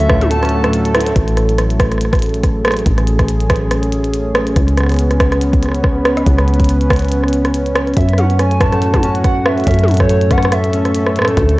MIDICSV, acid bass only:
0, 0, Header, 1, 2, 480
1, 0, Start_track
1, 0, Key_signature, 3, "major"
1, 0, Tempo, 425532
1, 1307, Time_signature, 4, 2, 24, 8
1, 13078, End_track
2, 0, Start_track
2, 0, Title_t, "Acid bass"
2, 0, Program_c, 0, 38
2, 0, Note_on_c, 0, 38, 90
2, 1286, Note_off_c, 0, 38, 0
2, 1307, Note_on_c, 0, 33, 88
2, 3206, Note_off_c, 0, 33, 0
2, 3226, Note_on_c, 0, 33, 90
2, 5125, Note_off_c, 0, 33, 0
2, 5146, Note_on_c, 0, 37, 90
2, 7045, Note_off_c, 0, 37, 0
2, 7066, Note_on_c, 0, 37, 90
2, 8965, Note_off_c, 0, 37, 0
2, 8986, Note_on_c, 0, 42, 89
2, 10885, Note_off_c, 0, 42, 0
2, 10907, Note_on_c, 0, 42, 91
2, 12806, Note_off_c, 0, 42, 0
2, 12826, Note_on_c, 0, 38, 89
2, 13078, Note_off_c, 0, 38, 0
2, 13078, End_track
0, 0, End_of_file